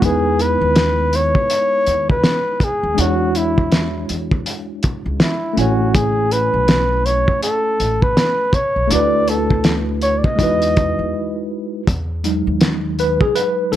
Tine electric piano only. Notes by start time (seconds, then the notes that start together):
Already playing: G#3
0.00 B3 D#4 E4
0.05 B4
2.94 G#3 D4 E4
3.00 F#4 C#5
5.53 A3 C#4 E4
5.59 C#5 G#5
8.87 A3 D4
8.91 E4 F#4 B4
10.36 G#3 D#4 E4
10.41 F#4 B4
12.24 F#3 G#3 D#4
13.00 B4
13.22 G#4
13.35 B4
13.71 F#3 G#3 D#4 A4